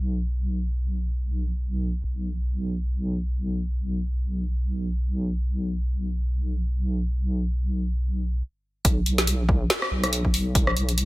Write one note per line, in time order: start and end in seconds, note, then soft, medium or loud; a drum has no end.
0.00 2.02 B1 medium
2.04 8.42 B1 medium
8.85 9.69 B1 loud
8.85 kick loud
8.85 closed hi-hat medium
9.06 closed hi-hat medium
9.18 snare soft
9.18 closed hi-hat medium
9.27 closed hi-hat medium
9.49 kick loud
9.70 snare loud
9.70 closed hi-hat medium
9.82 cross-stick medium
9.91 10.54 B1 loud
10.04 cross-stick medium
10.04 closed hi-hat medium
10.13 closed hi-hat medium
10.25 kick medium
10.34 open hi-hat loud
10.55 11.05 B1 loud
10.55 kick loud
10.55 closed hi-hat medium
10.67 cross-stick medium
10.77 closed hi-hat medium
10.89 closed hi-hat medium
10.98 closed hi-hat medium